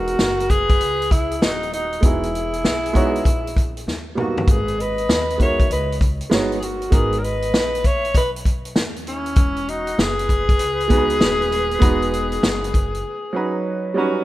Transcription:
Already playing: E1 G#3 B3 D#4 F#4 A#4
0.07 closed hi-hat
0.19 F#1, snare
0.40 closed hi-hat
0.49 G#4 B4, kick, closed hi-hat
0.70 kick, closed hi-hat
0.81 C#2, closed hi-hat
1.02 closed hi-hat
1.11 E4 G#4, kick, closed hi-hat
1.31 closed hi-hat
1.41 D#1 D#4 F#4, snare
1.63 closed hi-hat
1.73 D#4 F#4, closed hi-hat
1.93 closed hi-hat
2.01 E1 G#3 B3 D#4 F#4 G#4, kick, closed hi-hat
2.05 E4
2.23 closed hi-hat
2.35 closed hi-hat
2.53 closed hi-hat
2.65 B1, snare
2.86 closed hi-hat
2.93 G#3 B3 D#4 F#4 C#5, kick, closed hi-hat
3.16 closed hi-hat
3.25 A#1, kick, closed hi-hat
3.47 closed hi-hat
3.57 kick, closed hi-hat
3.77 closed hi-hat
3.87 D#2, snare
4.15 G3 A#3 B3 D#4 F#4 A4, mid tom
4.19 F#4
4.38 floor tom
4.48 G#1 G#4 B4, kick, closed hi-hat
4.68 closed hi-hat
4.79 B4 D#5, closed hi-hat
4.98 closed hi-hat
5.08 D#2, snare
5.30 closed hi-hat
5.38 G#3 B3 D#4 F#4 A#4 E5, kick, closed hi-hat
5.42 C#5
5.60 kick, closed hi-hat
5.70 C#2 B4 D#5, closed hi-hat
5.92 closed hi-hat
6.01 kick, closed hi-hat
6.21 muted upright bass stroke, closed hi-hat
6.30 G1 G#3 B3 D#4 F#4 C#5, snare
6.52 closed hi-hat
6.56 G#4 B4
6.62 F#4 A#4, closed hi-hat
6.82 closed hi-hat
6.90 G#1 G#3 B3 D#4 F#4 G#4 A#4 B4, kick, closed hi-hat
7.13 closed hi-hat
7.19 A#4 C#5 D#5
7.24 B4, closed hi-hat
7.42 closed hi-hat
7.53 A#1, snare
7.75 closed hi-hat
7.84 C#5 E5, kick, closed hi-hat
8.05 closed hi-hat
8.15 B1 B4 D#5, kick, closed hi-hat
8.36 closed hi-hat
8.45 kick, closed hi-hat
8.65 closed hi-hat
8.76 D#2, snare
8.96 closed hi-hat
9.07 C#4 E4, closed hi-hat
9.26 closed hi-hat
9.36 E1, kick, closed hi-hat
9.56 closed hi-hat
9.68 D#4 F#4, closed hi-hat
9.87 closed hi-hat
9.98 F#1 G#4 B4, snare
10.19 closed hi-hat
10.29 kick, closed hi-hat
10.49 kick, closed hi-hat
10.59 C#2, closed hi-hat
10.80 closed hi-hat
10.88 G#3 B3 D#4 F#4 G#4, kick, closed hi-hat
10.98 B4
11.10 closed hi-hat
11.20 D#1, snare
11.42 closed hi-hat
11.52 closed hi-hat
11.71 closed hi-hat
11.79 E1 G#3 B3 D#4 F#4 B4, kick, closed hi-hat
12.02 closed hi-hat
12.14 closed hi-hat
12.32 closed hi-hat
12.43 F#1, snare
12.64 closed hi-hat
12.74 kick, closed hi-hat
12.95 closed hi-hat
13.33 F#3 C#4 D#4 F#4 B4
13.94 G3 C#4 D#4 F#4 B4

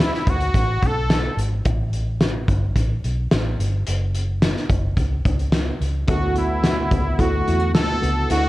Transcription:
Already playing: D2 E4
0.00 closed hi-hat
0.14 snare
0.27 D2 F#4, kick, closed hi-hat
0.40 closed hi-hat
0.54 A1, kick, closed hi-hat
0.82 B1 A4, kick, closed hi-hat
1.10 snare, closed hi-hat
1.37 G#1, closed hi-hat
1.65 A1, kick, closed hi-hat
1.93 closed hi-hat
2.21 snare, closed hi-hat
2.48 G1, kick, closed hi-hat
2.76 A1, kick, closed hi-hat
3.04 B1, closed hi-hat
3.31 A1, snare, closed hi-hat
3.59 G1, closed hi-hat
3.87 F#1, closed hi-hat
4.15 closed hi-hat
4.42 snare, closed hi-hat
4.57 snare
4.70 F#1, kick, closed hi-hat
4.97 C#2, kick, closed hi-hat
5.25 C#2, kick, closed hi-hat
5.39 closed hi-hat
5.52 snare, closed hi-hat
5.81 C#2, closed hi-hat
6.07 D2 D3 A3 B3 E4 F#4, kick, closed hi-hat
6.35 B3 E4, closed hi-hat
6.63 F#4, snare, closed hi-hat
6.90 C#2 B3, kick, closed hi-hat
7.18 D2 A3 B3 E4 F#4, kick, closed hi-hat
7.48 E2 E4, closed hi-hat
7.60 F#4
7.74 D2 A3 A4, snare, closed hi-hat
8.01 C#2 B3, closed hi-hat
8.29 D2 D3 A3 B3 E4 F#4 F#5, closed hi-hat

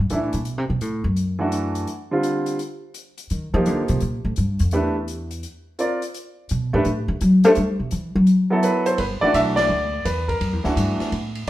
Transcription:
0.00 G2
0.10 A2 E3 A3 D4 E4, closed hi-hat
0.33 A#2, closed hi-hat
0.45 B2, closed hi-hat
0.58 C3
0.70 B2
0.81 A2, closed hi-hat
1.04 F#2
1.16 closed hi-hat
1.39 E3 A3 D4 F#4
1.52 closed hi-hat
1.75 closed hi-hat
1.87 closed hi-hat
2.11 D3 G3 C4 F4
2.23 closed hi-hat
2.46 closed hi-hat
2.59 closed hi-hat
2.94 closed hi-hat
3.18 closed hi-hat
3.30 D#3, closed hi-hat
3.54 F3 A#3 D#4 G4
3.66 D3, closed hi-hat
3.88 C3, closed hi-hat
4.00 A#2, closed hi-hat
4.25 A2
4.36 G2, closed hi-hat
4.59 F2, closed hi-hat
4.71 E2 A3 D4 G4 B4, closed hi-hat
5.08 closed hi-hat
5.31 closed hi-hat
5.43 closed hi-hat
5.79 C4 F4 A#4 D5, closed hi-hat
6.02 closed hi-hat
6.14 closed hi-hat
6.49 B2, closed hi-hat
6.73 G#2 A3 D4 G4 B4
6.85 A2, closed hi-hat
7.08 D3
7.21 F#3, closed hi-hat
7.44 A3 D4 G4 C5, closed hi-hat
7.55 G3, closed hi-hat
7.80 B2
7.91 E3, closed hi-hat
8.15 F#3
8.27 closed hi-hat
8.50 F#3 B3 E4 A4
8.63 B4, closed hi-hat
8.86 C5, closed hi-hat
8.98 G1 B4, kick, ride
9.21 E3 A3 D4 F#4 D5, muted upright bass stroke
9.34 B1 E5, kick, hi-hat pedal, ride
9.56 D5, snare, ride
9.69 D2
10.05 E2 B4, kick, hi-hat pedal, ride
10.28 A#4, kick, ride
10.41 F#2, kick, ride
10.53 E2
10.64 D2 E3 A3 D4 F#4, snare
10.76 G2, kick, hi-hat pedal, ride
11.00 muted upright bass stroke, snare, ride
11.12 A2, kick, ride
11.35 ride

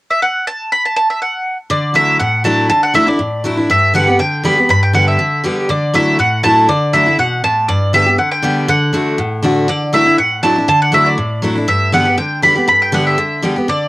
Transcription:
0.10 E5
0.22 F#5
0.47 A5
0.72 B5
0.85 A5
0.96 A5
1.10 E5
1.22 F#5
1.70 D3 D5
1.94 F#3 A3 D4 E4 E5
2.19 A2 F#5
2.44 F#3 A3 D4 E4 A5
2.70 D3 A5
2.83 F#5
2.94 F#3 A3 D4 E4 E5
3.07 D4 E4 D5
3.19 A2
3.44 F#3 A3 D4 E4
3.57 D4 E4
3.70 G2 E5
3.94 D3 G3 B3 G4 F#5
4.07 B3 G4
4.19 D3 G5
4.44 D3 G3 B3 G4 B5
4.57 B3 G4
4.69 G2 B5
4.83 G5
4.94 D3 G3 B3 G4 F#5
5.08 E5
5.19 D3
5.44 D3 G3 B3 G4
5.69 D3 D5
5.94 F#3 A3 D4 E4 E5
6.19 A2 F#5
6.43 F#3 A3 D4 E4 A5
6.69 D3 D5
6.93 F#3 A3 D4 E4 E5
7.06 D4 E4
7.19 B2 F#5
7.44 A2 A5
7.68 G2 D5
7.93 D3 G3 B3 G4 E5
8.06 B3 G4
8.18 D3 F#5
8.32 G5
8.43 D3 G3 B3 G4
8.68 D3 F#5
8.93 D3 A3 D4 F#4
9.18 A2
9.42 D3 A3 D4 F#4
9.68 D3 D5
9.92 F#3 A3 D4 E4 E5
10.06 D4 E4
10.18 A2 F#5
10.43 F#3 A3 D4 E4 A5
10.56 D4 E4
10.68 D3 A5
10.82 F#5
10.92 F#3 A3 D4 E4 E5
11.06 D5
11.18 A2
11.42 F#3 A3 D4 E4
11.55 D4 E4
11.68 G2 E5
11.92 D3 G3 B3 G4 F#5
12.05 B3 G4
12.17 D3 G5
12.42 D3 G3 B3 G4 B5
12.56 B3 G4
12.68 G2 B5
12.82 G5
12.92 D3 G3 B3 G4 F#5
13.07 E5
13.18 D3
13.42 D3 G3 B3 G4
13.56 B3 G4
13.68 D3 D5

